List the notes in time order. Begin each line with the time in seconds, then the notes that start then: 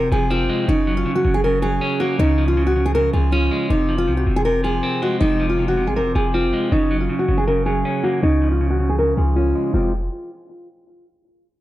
Already playing: F1 C3 F3 A#4
0.12 F1 F3 G#4
0.30 C4 F4
0.40 F#1
0.49 G#3
0.68 F#1 C#3 D#4
0.87 F#3
0.97 F4
1.06 C#3
1.16 F#4
1.25 F#1 C#3
1.34 G#4
1.44 C#3 A#4
1.62 F#3 G#4
1.81 C#4
2.00 A#3 F#4
2.19 C#2 C#3 D#4
2.38 F3
2.48 F4
2.57 C#3
2.67 F#4
2.76 C#3
2.86 G#4
2.95 C#3 A#4
3.13 C#2 F3 G#4
3.32 C#4 F4
3.51 G#3
3.70 F1 C3 D#4
3.89 F3
3.98 F4
4.08 C2 C3
4.17 F#4
4.27 F1 C3
4.36 G#4
4.45 C3 A#4
4.64 F3 G#4
4.83 C4
5.02 G#3 F#4
5.20 F1 C3 D#4
5.40 F3
5.49 F4
5.59 C3
5.68 F#4
5.77 C3
5.87 G#1 G#4
5.96 C3 A#4
6.01 F1
6.15 F1 F3 G#4
6.34 C4 F4
6.44 F#1
6.53 G#3
6.72 F#1 C#3 D#4
6.91 F#3
7.01 F4
7.09 C#3
7.19 F#4
7.28 F#1 C#3
7.38 G#4
7.47 C#3 A#4
7.66 F#3 G#4
7.85 C#4
8.04 A#3 F#4
8.23 C#2 C#3 D#4
8.42 F3
8.52 F4
8.61 C#3
8.70 F#4
8.80 C#3
8.89 G#4
8.98 C#3 A#4
9.17 C#2 F3 G#4
9.36 C#4 F4
9.55 G#3
9.73 F1 C3 F3 G#3 C4 F4